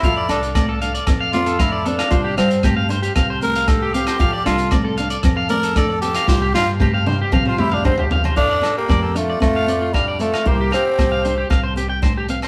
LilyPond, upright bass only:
\new Staff \with { instrumentName = "Upright bass" } { \clef bass \time 4/4 \key f \major \tempo 4 = 115 f,8 c,4. f,2 | c,8 g,4. c,2 | f,8 c,4. f,2 | c,8 g,4. c,2 |
f,8 r8 f,4 f,2 | c,8 r8 c,4 c,2 | }